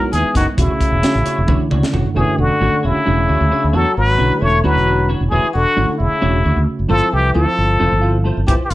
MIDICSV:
0, 0, Header, 1, 8, 480
1, 0, Start_track
1, 0, Tempo, 451807
1, 611, Time_signature, 7, 3, 24, 8
1, 9286, End_track
2, 0, Start_track
2, 0, Title_t, "Muted trumpet"
2, 0, Program_c, 0, 59
2, 0, Note_on_c, 0, 70, 83
2, 121, Note_off_c, 0, 70, 0
2, 127, Note_on_c, 0, 68, 80
2, 352, Note_off_c, 0, 68, 0
2, 389, Note_on_c, 0, 66, 71
2, 493, Note_off_c, 0, 66, 0
2, 626, Note_on_c, 0, 64, 79
2, 1777, Note_off_c, 0, 64, 0
2, 2305, Note_on_c, 0, 68, 76
2, 2548, Note_on_c, 0, 66, 81
2, 2564, Note_off_c, 0, 68, 0
2, 3032, Note_on_c, 0, 64, 76
2, 3048, Note_off_c, 0, 66, 0
2, 3986, Note_on_c, 0, 69, 89
2, 4002, Note_off_c, 0, 64, 0
2, 4219, Note_off_c, 0, 69, 0
2, 4224, Note_on_c, 0, 71, 97
2, 4698, Note_on_c, 0, 73, 86
2, 4714, Note_off_c, 0, 71, 0
2, 4925, Note_off_c, 0, 73, 0
2, 4931, Note_on_c, 0, 71, 85
2, 5433, Note_off_c, 0, 71, 0
2, 5630, Note_on_c, 0, 68, 82
2, 5863, Note_off_c, 0, 68, 0
2, 5881, Note_on_c, 0, 66, 91
2, 6332, Note_off_c, 0, 66, 0
2, 6354, Note_on_c, 0, 64, 72
2, 7040, Note_off_c, 0, 64, 0
2, 7325, Note_on_c, 0, 69, 99
2, 7581, Note_on_c, 0, 67, 89
2, 7597, Note_off_c, 0, 69, 0
2, 7801, Note_off_c, 0, 67, 0
2, 7807, Note_on_c, 0, 69, 87
2, 8726, Note_off_c, 0, 69, 0
2, 8997, Note_on_c, 0, 67, 81
2, 9075, Note_off_c, 0, 67, 0
2, 9188, Note_on_c, 0, 67, 64
2, 9247, Note_on_c, 0, 65, 87
2, 9263, Note_off_c, 0, 67, 0
2, 9286, Note_off_c, 0, 65, 0
2, 9286, End_track
3, 0, Start_track
3, 0, Title_t, "Clean electric guitar"
3, 0, Program_c, 1, 27
3, 127, Note_on_c, 1, 71, 39
3, 137, Note_on_c, 1, 64, 35
3, 144, Note_on_c, 1, 63, 35
3, 272, Note_off_c, 1, 71, 0
3, 278, Note_off_c, 1, 64, 0
3, 281, Note_off_c, 1, 63, 0
3, 362, Note_on_c, 1, 56, 49
3, 370, Note_on_c, 1, 63, 57
3, 373, Note_on_c, 1, 64, 58
3, 378, Note_on_c, 1, 71, 51
3, 510, Note_off_c, 1, 56, 0
3, 514, Note_off_c, 1, 63, 0
3, 516, Note_off_c, 1, 64, 0
3, 518, Note_off_c, 1, 71, 0
3, 609, Note_on_c, 1, 57, 59
3, 612, Note_on_c, 1, 62, 72
3, 614, Note_on_c, 1, 66, 70
3, 614, Note_on_c, 1, 73, 67
3, 754, Note_off_c, 1, 57, 0
3, 755, Note_off_c, 1, 62, 0
3, 756, Note_off_c, 1, 73, 0
3, 757, Note_off_c, 1, 66, 0
3, 1091, Note_on_c, 1, 57, 49
3, 1096, Note_on_c, 1, 62, 53
3, 1103, Note_on_c, 1, 66, 53
3, 1104, Note_on_c, 1, 73, 56
3, 1235, Note_off_c, 1, 57, 0
3, 1238, Note_off_c, 1, 62, 0
3, 1241, Note_off_c, 1, 66, 0
3, 1242, Note_off_c, 1, 73, 0
3, 1333, Note_on_c, 1, 73, 50
3, 1340, Note_on_c, 1, 66, 41
3, 1345, Note_on_c, 1, 62, 36
3, 1476, Note_off_c, 1, 73, 0
3, 1479, Note_off_c, 1, 66, 0
3, 1482, Note_off_c, 1, 62, 0
3, 1571, Note_on_c, 1, 57, 72
3, 1576, Note_on_c, 1, 62, 77
3, 1579, Note_on_c, 1, 73, 89
3, 1580, Note_on_c, 1, 66, 85
3, 1715, Note_off_c, 1, 57, 0
3, 1718, Note_off_c, 1, 62, 0
3, 1719, Note_off_c, 1, 73, 0
3, 1720, Note_off_c, 1, 66, 0
3, 1813, Note_on_c, 1, 73, 45
3, 1821, Note_on_c, 1, 66, 40
3, 1828, Note_on_c, 1, 62, 36
3, 1956, Note_off_c, 1, 73, 0
3, 1960, Note_off_c, 1, 66, 0
3, 1964, Note_off_c, 1, 62, 0
3, 2048, Note_on_c, 1, 57, 57
3, 2052, Note_on_c, 1, 62, 59
3, 2057, Note_on_c, 1, 66, 64
3, 2060, Note_on_c, 1, 73, 69
3, 2194, Note_off_c, 1, 57, 0
3, 2196, Note_off_c, 1, 62, 0
3, 2198, Note_off_c, 1, 66, 0
3, 2200, Note_off_c, 1, 73, 0
3, 2293, Note_on_c, 1, 57, 66
3, 2294, Note_on_c, 1, 62, 65
3, 2297, Note_on_c, 1, 66, 77
3, 2300, Note_on_c, 1, 73, 74
3, 2436, Note_off_c, 1, 57, 0
3, 2437, Note_off_c, 1, 62, 0
3, 2439, Note_off_c, 1, 66, 0
3, 2440, Note_off_c, 1, 73, 0
3, 2770, Note_on_c, 1, 57, 55
3, 2773, Note_on_c, 1, 62, 59
3, 2775, Note_on_c, 1, 66, 58
3, 2781, Note_on_c, 1, 73, 58
3, 2915, Note_off_c, 1, 57, 0
3, 2916, Note_off_c, 1, 62, 0
3, 2918, Note_off_c, 1, 66, 0
3, 2920, Note_off_c, 1, 73, 0
3, 3007, Note_on_c, 1, 73, 45
3, 3016, Note_on_c, 1, 66, 41
3, 3022, Note_on_c, 1, 62, 33
3, 3153, Note_off_c, 1, 73, 0
3, 3158, Note_off_c, 1, 66, 0
3, 3161, Note_off_c, 1, 62, 0
3, 3246, Note_on_c, 1, 57, 72
3, 3250, Note_on_c, 1, 62, 68
3, 3250, Note_on_c, 1, 66, 69
3, 3256, Note_on_c, 1, 73, 80
3, 3393, Note_off_c, 1, 57, 0
3, 3395, Note_off_c, 1, 62, 0
3, 3395, Note_off_c, 1, 66, 0
3, 3398, Note_off_c, 1, 73, 0
3, 3486, Note_on_c, 1, 73, 37
3, 3493, Note_on_c, 1, 66, 41
3, 3498, Note_on_c, 1, 62, 36
3, 3633, Note_off_c, 1, 73, 0
3, 3636, Note_off_c, 1, 66, 0
3, 3639, Note_off_c, 1, 62, 0
3, 3726, Note_on_c, 1, 57, 56
3, 3732, Note_on_c, 1, 62, 61
3, 3735, Note_on_c, 1, 66, 56
3, 3741, Note_on_c, 1, 73, 66
3, 3873, Note_off_c, 1, 57, 0
3, 3876, Note_off_c, 1, 62, 0
3, 3877, Note_off_c, 1, 66, 0
3, 3880, Note_off_c, 1, 73, 0
3, 3960, Note_on_c, 1, 57, 64
3, 3962, Note_on_c, 1, 62, 72
3, 3965, Note_on_c, 1, 66, 65
3, 3967, Note_on_c, 1, 73, 76
3, 4110, Note_off_c, 1, 57, 0
3, 4111, Note_off_c, 1, 62, 0
3, 4112, Note_off_c, 1, 66, 0
3, 4113, Note_off_c, 1, 73, 0
3, 4440, Note_on_c, 1, 57, 55
3, 4445, Note_on_c, 1, 62, 57
3, 4449, Note_on_c, 1, 66, 54
3, 4451, Note_on_c, 1, 73, 59
3, 4590, Note_off_c, 1, 57, 0
3, 4592, Note_off_c, 1, 62, 0
3, 4594, Note_off_c, 1, 66, 0
3, 4595, Note_off_c, 1, 73, 0
3, 4685, Note_on_c, 1, 73, 42
3, 4695, Note_on_c, 1, 66, 39
3, 4697, Note_on_c, 1, 62, 36
3, 4832, Note_off_c, 1, 73, 0
3, 4837, Note_off_c, 1, 66, 0
3, 4838, Note_off_c, 1, 62, 0
3, 4925, Note_on_c, 1, 57, 72
3, 4927, Note_on_c, 1, 62, 75
3, 4932, Note_on_c, 1, 66, 78
3, 4937, Note_on_c, 1, 73, 76
3, 5072, Note_off_c, 1, 57, 0
3, 5073, Note_off_c, 1, 62, 0
3, 5076, Note_off_c, 1, 66, 0
3, 5078, Note_off_c, 1, 73, 0
3, 5166, Note_on_c, 1, 73, 39
3, 5168, Note_on_c, 1, 66, 41
3, 5174, Note_on_c, 1, 62, 39
3, 5312, Note_off_c, 1, 73, 0
3, 5314, Note_off_c, 1, 66, 0
3, 5316, Note_off_c, 1, 62, 0
3, 5401, Note_on_c, 1, 57, 48
3, 5407, Note_on_c, 1, 62, 55
3, 5410, Note_on_c, 1, 66, 54
3, 5415, Note_on_c, 1, 73, 62
3, 5550, Note_off_c, 1, 57, 0
3, 5553, Note_off_c, 1, 62, 0
3, 5554, Note_off_c, 1, 66, 0
3, 5557, Note_off_c, 1, 73, 0
3, 5646, Note_on_c, 1, 57, 65
3, 5646, Note_on_c, 1, 62, 68
3, 5652, Note_on_c, 1, 66, 72
3, 5653, Note_on_c, 1, 73, 80
3, 5792, Note_off_c, 1, 57, 0
3, 5793, Note_off_c, 1, 62, 0
3, 5795, Note_off_c, 1, 66, 0
3, 5796, Note_off_c, 1, 73, 0
3, 6122, Note_on_c, 1, 57, 54
3, 6127, Note_on_c, 1, 62, 63
3, 6130, Note_on_c, 1, 66, 56
3, 6132, Note_on_c, 1, 73, 65
3, 6270, Note_off_c, 1, 57, 0
3, 6273, Note_off_c, 1, 62, 0
3, 6274, Note_off_c, 1, 66, 0
3, 6275, Note_off_c, 1, 73, 0
3, 6603, Note_on_c, 1, 57, 73
3, 6605, Note_on_c, 1, 62, 74
3, 6607, Note_on_c, 1, 66, 75
3, 6610, Note_on_c, 1, 73, 86
3, 6751, Note_off_c, 1, 57, 0
3, 6752, Note_off_c, 1, 62, 0
3, 6753, Note_off_c, 1, 66, 0
3, 6754, Note_off_c, 1, 73, 0
3, 6844, Note_on_c, 1, 73, 44
3, 6848, Note_on_c, 1, 66, 37
3, 6858, Note_on_c, 1, 62, 36
3, 6991, Note_off_c, 1, 73, 0
3, 6993, Note_off_c, 1, 66, 0
3, 6998, Note_off_c, 1, 62, 0
3, 7320, Note_on_c, 1, 57, 74
3, 7321, Note_on_c, 1, 64, 67
3, 7326, Note_on_c, 1, 65, 74
3, 7327, Note_on_c, 1, 72, 75
3, 7469, Note_off_c, 1, 57, 0
3, 7470, Note_off_c, 1, 64, 0
3, 7472, Note_off_c, 1, 65, 0
3, 7473, Note_off_c, 1, 72, 0
3, 7803, Note_on_c, 1, 57, 56
3, 7807, Note_on_c, 1, 64, 57
3, 7808, Note_on_c, 1, 65, 61
3, 7813, Note_on_c, 1, 72, 63
3, 7951, Note_off_c, 1, 57, 0
3, 7952, Note_off_c, 1, 64, 0
3, 7953, Note_off_c, 1, 65, 0
3, 7955, Note_off_c, 1, 72, 0
3, 8280, Note_on_c, 1, 57, 70
3, 8285, Note_on_c, 1, 64, 72
3, 8288, Note_on_c, 1, 65, 76
3, 8293, Note_on_c, 1, 72, 81
3, 8429, Note_off_c, 1, 57, 0
3, 8432, Note_off_c, 1, 64, 0
3, 8433, Note_off_c, 1, 65, 0
3, 8435, Note_off_c, 1, 72, 0
3, 8521, Note_on_c, 1, 72, 50
3, 8527, Note_on_c, 1, 65, 44
3, 8533, Note_on_c, 1, 64, 39
3, 8669, Note_off_c, 1, 72, 0
3, 8672, Note_off_c, 1, 65, 0
3, 8675, Note_off_c, 1, 64, 0
3, 8761, Note_on_c, 1, 57, 57
3, 8766, Note_on_c, 1, 64, 55
3, 8769, Note_on_c, 1, 65, 55
3, 8773, Note_on_c, 1, 72, 64
3, 8909, Note_off_c, 1, 57, 0
3, 8912, Note_off_c, 1, 64, 0
3, 8913, Note_off_c, 1, 65, 0
3, 8915, Note_off_c, 1, 72, 0
3, 9000, Note_on_c, 1, 57, 59
3, 9002, Note_on_c, 1, 64, 68
3, 9006, Note_on_c, 1, 65, 76
3, 9009, Note_on_c, 1, 72, 81
3, 9149, Note_off_c, 1, 57, 0
3, 9150, Note_off_c, 1, 64, 0
3, 9152, Note_off_c, 1, 65, 0
3, 9153, Note_off_c, 1, 72, 0
3, 9286, End_track
4, 0, Start_track
4, 0, Title_t, "Tine electric piano"
4, 0, Program_c, 2, 4
4, 0, Note_on_c, 2, 56, 53
4, 0, Note_on_c, 2, 59, 56
4, 0, Note_on_c, 2, 63, 61
4, 0, Note_on_c, 2, 64, 66
4, 607, Note_on_c, 2, 49, 60
4, 608, Note_off_c, 2, 63, 0
4, 608, Note_on_c, 2, 57, 60
4, 609, Note_off_c, 2, 56, 0
4, 614, Note_off_c, 2, 59, 0
4, 615, Note_off_c, 2, 64, 0
4, 615, Note_on_c, 2, 61, 62
4, 621, Note_on_c, 2, 66, 71
4, 1021, Note_off_c, 2, 49, 0
4, 1021, Note_off_c, 2, 57, 0
4, 1025, Note_off_c, 2, 61, 0
4, 1028, Note_off_c, 2, 66, 0
4, 1085, Note_on_c, 2, 49, 53
4, 1090, Note_on_c, 2, 57, 50
4, 1096, Note_on_c, 2, 61, 50
4, 1104, Note_on_c, 2, 66, 58
4, 1500, Note_off_c, 2, 49, 0
4, 1503, Note_off_c, 2, 57, 0
4, 1505, Note_off_c, 2, 61, 0
4, 1509, Note_off_c, 2, 66, 0
4, 1556, Note_on_c, 2, 50, 75
4, 1562, Note_on_c, 2, 57, 64
4, 1572, Note_on_c, 2, 64, 79
4, 1573, Note_on_c, 2, 61, 62
4, 1817, Note_on_c, 2, 74, 60
4, 2038, Note_off_c, 2, 74, 0
4, 2053, Note_on_c, 2, 78, 55
4, 2266, Note_off_c, 2, 50, 0
4, 2274, Note_off_c, 2, 57, 0
4, 2275, Note_off_c, 2, 78, 0
4, 2279, Note_on_c, 2, 50, 71
4, 2280, Note_off_c, 2, 61, 0
4, 2287, Note_on_c, 2, 57, 67
4, 2292, Note_off_c, 2, 64, 0
4, 2293, Note_on_c, 2, 61, 62
4, 2298, Note_on_c, 2, 66, 76
4, 2697, Note_off_c, 2, 50, 0
4, 2701, Note_off_c, 2, 57, 0
4, 2704, Note_off_c, 2, 61, 0
4, 2706, Note_off_c, 2, 66, 0
4, 2768, Note_on_c, 2, 50, 57
4, 2770, Note_on_c, 2, 57, 53
4, 2778, Note_on_c, 2, 61, 50
4, 2778, Note_on_c, 2, 66, 60
4, 3181, Note_off_c, 2, 50, 0
4, 3183, Note_off_c, 2, 57, 0
4, 3187, Note_off_c, 2, 61, 0
4, 3187, Note_off_c, 2, 66, 0
4, 3243, Note_on_c, 2, 49, 60
4, 3250, Note_on_c, 2, 57, 58
4, 3254, Note_on_c, 2, 61, 55
4, 3261, Note_on_c, 2, 64, 68
4, 4070, Note_off_c, 2, 49, 0
4, 4074, Note_off_c, 2, 57, 0
4, 4076, Note_off_c, 2, 61, 0
4, 4080, Note_off_c, 2, 64, 0
4, 4444, Note_on_c, 2, 50, 56
4, 4449, Note_on_c, 2, 57, 52
4, 4451, Note_on_c, 2, 61, 49
4, 4456, Note_on_c, 2, 64, 62
4, 4859, Note_off_c, 2, 50, 0
4, 4862, Note_off_c, 2, 57, 0
4, 4863, Note_off_c, 2, 61, 0
4, 4865, Note_off_c, 2, 64, 0
4, 4927, Note_on_c, 2, 50, 60
4, 4930, Note_on_c, 2, 57, 55
4, 4936, Note_on_c, 2, 61, 60
4, 4942, Note_on_c, 2, 64, 69
4, 5752, Note_off_c, 2, 50, 0
4, 5754, Note_off_c, 2, 57, 0
4, 5757, Note_off_c, 2, 61, 0
4, 5759, Note_off_c, 2, 64, 0
4, 6120, Note_on_c, 2, 50, 55
4, 6129, Note_on_c, 2, 57, 55
4, 6132, Note_on_c, 2, 61, 52
4, 6136, Note_on_c, 2, 64, 64
4, 6537, Note_off_c, 2, 50, 0
4, 6541, Note_off_c, 2, 57, 0
4, 6543, Note_off_c, 2, 61, 0
4, 6545, Note_off_c, 2, 64, 0
4, 6597, Note_on_c, 2, 49, 64
4, 6610, Note_on_c, 2, 57, 60
4, 6610, Note_on_c, 2, 61, 57
4, 6618, Note_on_c, 2, 66, 70
4, 7312, Note_on_c, 2, 53, 72
4, 7315, Note_on_c, 2, 60, 66
4, 7323, Note_on_c, 2, 64, 67
4, 7324, Note_off_c, 2, 49, 0
4, 7330, Note_off_c, 2, 57, 0
4, 7330, Note_off_c, 2, 61, 0
4, 7330, Note_on_c, 2, 69, 76
4, 7334, Note_off_c, 2, 66, 0
4, 7733, Note_off_c, 2, 53, 0
4, 7734, Note_off_c, 2, 60, 0
4, 7738, Note_off_c, 2, 64, 0
4, 7742, Note_off_c, 2, 69, 0
4, 7795, Note_on_c, 2, 53, 61
4, 7802, Note_on_c, 2, 60, 53
4, 7805, Note_on_c, 2, 64, 49
4, 7810, Note_on_c, 2, 69, 60
4, 8214, Note_off_c, 2, 53, 0
4, 8218, Note_off_c, 2, 60, 0
4, 8219, Note_off_c, 2, 64, 0
4, 8221, Note_off_c, 2, 69, 0
4, 8281, Note_on_c, 2, 53, 63
4, 8283, Note_on_c, 2, 60, 54
4, 8284, Note_on_c, 2, 64, 57
4, 8293, Note_on_c, 2, 69, 68
4, 8514, Note_on_c, 2, 77, 65
4, 8745, Note_off_c, 2, 77, 0
4, 8755, Note_on_c, 2, 81, 61
4, 8985, Note_off_c, 2, 81, 0
4, 9108, Note_off_c, 2, 53, 0
4, 9109, Note_off_c, 2, 60, 0
4, 9110, Note_off_c, 2, 64, 0
4, 9114, Note_off_c, 2, 69, 0
4, 9286, End_track
5, 0, Start_track
5, 0, Title_t, "Trombone"
5, 0, Program_c, 3, 57
5, 0, Note_on_c, 3, 54, 77
5, 143, Note_off_c, 3, 54, 0
5, 149, Note_on_c, 3, 52, 61
5, 363, Note_off_c, 3, 52, 0
5, 389, Note_on_c, 3, 51, 63
5, 493, Note_off_c, 3, 51, 0
5, 624, Note_on_c, 3, 49, 67
5, 1776, Note_off_c, 3, 49, 0
5, 2323, Note_on_c, 3, 52, 67
5, 2552, Note_on_c, 3, 50, 66
5, 2568, Note_off_c, 3, 52, 0
5, 3028, Note_on_c, 3, 49, 69
5, 3044, Note_off_c, 3, 50, 0
5, 3981, Note_on_c, 3, 54, 80
5, 3997, Note_off_c, 3, 49, 0
5, 4216, Note_off_c, 3, 54, 0
5, 4229, Note_on_c, 3, 54, 76
5, 4692, Note_on_c, 3, 57, 79
5, 4708, Note_off_c, 3, 54, 0
5, 4932, Note_off_c, 3, 57, 0
5, 4945, Note_on_c, 3, 54, 89
5, 5441, Note_off_c, 3, 54, 0
5, 5653, Note_on_c, 3, 52, 74
5, 5875, Note_off_c, 3, 52, 0
5, 5898, Note_on_c, 3, 50, 69
5, 6341, Note_off_c, 3, 50, 0
5, 6380, Note_on_c, 3, 49, 65
5, 7053, Note_off_c, 3, 49, 0
5, 7336, Note_on_c, 3, 53, 86
5, 7580, Note_on_c, 3, 52, 77
5, 7596, Note_off_c, 3, 53, 0
5, 7815, Note_off_c, 3, 52, 0
5, 7830, Note_on_c, 3, 53, 72
5, 8737, Note_off_c, 3, 53, 0
5, 9024, Note_on_c, 3, 52, 72
5, 9095, Note_off_c, 3, 52, 0
5, 9188, Note_on_c, 3, 52, 52
5, 9272, Note_off_c, 3, 52, 0
5, 9286, End_track
6, 0, Start_track
6, 0, Title_t, "Fretless electric bass"
6, 0, Program_c, 4, 35
6, 137, Note_on_c, 4, 39, 78
6, 234, Note_off_c, 4, 39, 0
6, 374, Note_on_c, 4, 30, 78
6, 473, Note_off_c, 4, 30, 0
6, 614, Note_on_c, 4, 28, 96
6, 713, Note_off_c, 4, 28, 0
6, 976, Note_on_c, 4, 28, 73
6, 1074, Note_off_c, 4, 28, 0
6, 1222, Note_on_c, 4, 33, 72
6, 1317, Note_off_c, 4, 33, 0
6, 1466, Note_on_c, 4, 28, 83
6, 1661, Note_off_c, 4, 28, 0
6, 1826, Note_on_c, 4, 37, 78
6, 1920, Note_off_c, 4, 37, 0
6, 2064, Note_on_c, 4, 28, 74
6, 2159, Note_off_c, 4, 28, 0
6, 2298, Note_on_c, 4, 28, 91
6, 2395, Note_off_c, 4, 28, 0
6, 2532, Note_on_c, 4, 28, 89
6, 2632, Note_off_c, 4, 28, 0
6, 2772, Note_on_c, 4, 32, 74
6, 2872, Note_off_c, 4, 32, 0
6, 3018, Note_on_c, 4, 28, 71
6, 3115, Note_off_c, 4, 28, 0
6, 3266, Note_on_c, 4, 28, 81
6, 3460, Note_off_c, 4, 28, 0
6, 3499, Note_on_c, 4, 38, 89
6, 3596, Note_off_c, 4, 38, 0
6, 3619, Note_on_c, 4, 38, 90
6, 3716, Note_off_c, 4, 38, 0
6, 3864, Note_on_c, 4, 38, 80
6, 3959, Note_off_c, 4, 38, 0
6, 3977, Note_on_c, 4, 40, 97
6, 4075, Note_off_c, 4, 40, 0
6, 4219, Note_on_c, 4, 32, 80
6, 4416, Note_off_c, 4, 32, 0
6, 4457, Note_on_c, 4, 35, 78
6, 4555, Note_off_c, 4, 35, 0
6, 4693, Note_on_c, 4, 28, 91
6, 4893, Note_off_c, 4, 28, 0
6, 4937, Note_on_c, 4, 38, 87
6, 5035, Note_off_c, 4, 38, 0
6, 5051, Note_on_c, 4, 28, 76
6, 5452, Note_off_c, 4, 28, 0
6, 5529, Note_on_c, 4, 28, 69
6, 5630, Note_off_c, 4, 28, 0
6, 5651, Note_on_c, 4, 28, 92
6, 5751, Note_off_c, 4, 28, 0
6, 5895, Note_on_c, 4, 28, 93
6, 5994, Note_off_c, 4, 28, 0
6, 6130, Note_on_c, 4, 32, 67
6, 6231, Note_off_c, 4, 32, 0
6, 6372, Note_on_c, 4, 28, 82
6, 6472, Note_off_c, 4, 28, 0
6, 6618, Note_on_c, 4, 28, 86
6, 6815, Note_off_c, 4, 28, 0
6, 6856, Note_on_c, 4, 38, 94
6, 6954, Note_off_c, 4, 38, 0
6, 6971, Note_on_c, 4, 38, 85
6, 7071, Note_off_c, 4, 38, 0
6, 7215, Note_on_c, 4, 30, 73
6, 7313, Note_off_c, 4, 30, 0
6, 7334, Note_on_c, 4, 31, 103
6, 7432, Note_off_c, 4, 31, 0
6, 7572, Note_on_c, 4, 36, 82
6, 7772, Note_off_c, 4, 36, 0
6, 7812, Note_on_c, 4, 38, 80
6, 7911, Note_off_c, 4, 38, 0
6, 8054, Note_on_c, 4, 31, 80
6, 8253, Note_off_c, 4, 31, 0
6, 8294, Note_on_c, 4, 29, 80
6, 8393, Note_off_c, 4, 29, 0
6, 8414, Note_on_c, 4, 31, 76
6, 8813, Note_off_c, 4, 31, 0
6, 8893, Note_on_c, 4, 31, 74
6, 8991, Note_off_c, 4, 31, 0
6, 9012, Note_on_c, 4, 31, 94
6, 9111, Note_off_c, 4, 31, 0
6, 9244, Note_on_c, 4, 31, 92
6, 9286, Note_off_c, 4, 31, 0
6, 9286, End_track
7, 0, Start_track
7, 0, Title_t, "Muted fretless electric bass strokes"
7, 265, Note_on_c, 9, 29, 33
7, 371, Note_off_c, 9, 29, 0
7, 858, Note_on_c, 9, 29, 32
7, 965, Note_off_c, 9, 29, 0
7, 1707, Note_on_c, 9, 29, 32
7, 1813, Note_off_c, 9, 29, 0
7, 1949, Note_on_c, 9, 29, 31
7, 2055, Note_off_c, 9, 29, 0
7, 2426, Note_on_c, 9, 29, 37
7, 2532, Note_off_c, 9, 29, 0
7, 3143, Note_on_c, 9, 29, 34
7, 3249, Note_off_c, 9, 29, 0
7, 3747, Note_on_c, 9, 29, 36
7, 3853, Note_off_c, 9, 29, 0
7, 4579, Note_on_c, 9, 29, 34
7, 4685, Note_off_c, 9, 29, 0
7, 6499, Note_on_c, 9, 29, 35
7, 6605, Note_off_c, 9, 29, 0
7, 7096, Note_on_c, 9, 29, 37
7, 7203, Note_off_c, 9, 29, 0
7, 7934, Note_on_c, 9, 29, 35
7, 8040, Note_off_c, 9, 29, 0
7, 9131, Note_on_c, 9, 29, 37
7, 9237, Note_off_c, 9, 29, 0
7, 9286, End_track
8, 0, Start_track
8, 0, Title_t, "Drums"
8, 137, Note_on_c, 9, 42, 52
8, 244, Note_off_c, 9, 42, 0
8, 374, Note_on_c, 9, 36, 65
8, 377, Note_on_c, 9, 42, 52
8, 387, Note_on_c, 9, 38, 28
8, 480, Note_off_c, 9, 36, 0
8, 483, Note_off_c, 9, 42, 0
8, 494, Note_off_c, 9, 38, 0
8, 615, Note_on_c, 9, 36, 99
8, 620, Note_on_c, 9, 42, 70
8, 722, Note_off_c, 9, 36, 0
8, 726, Note_off_c, 9, 42, 0
8, 856, Note_on_c, 9, 36, 68
8, 860, Note_on_c, 9, 42, 54
8, 962, Note_off_c, 9, 36, 0
8, 966, Note_off_c, 9, 42, 0
8, 1097, Note_on_c, 9, 42, 64
8, 1107, Note_on_c, 9, 38, 81
8, 1203, Note_off_c, 9, 42, 0
8, 1213, Note_off_c, 9, 38, 0
8, 1335, Note_on_c, 9, 42, 55
8, 1441, Note_off_c, 9, 42, 0
8, 1572, Note_on_c, 9, 48, 48
8, 1574, Note_on_c, 9, 36, 91
8, 1678, Note_off_c, 9, 48, 0
8, 1680, Note_off_c, 9, 36, 0
8, 1818, Note_on_c, 9, 47, 61
8, 1925, Note_off_c, 9, 47, 0
8, 1948, Note_on_c, 9, 38, 63
8, 2054, Note_off_c, 9, 38, 0
8, 2057, Note_on_c, 9, 43, 76
8, 2164, Note_off_c, 9, 43, 0
8, 9012, Note_on_c, 9, 36, 89
8, 9012, Note_on_c, 9, 42, 68
8, 9118, Note_off_c, 9, 36, 0
8, 9118, Note_off_c, 9, 42, 0
8, 9248, Note_on_c, 9, 42, 61
8, 9286, Note_off_c, 9, 42, 0
8, 9286, End_track
0, 0, End_of_file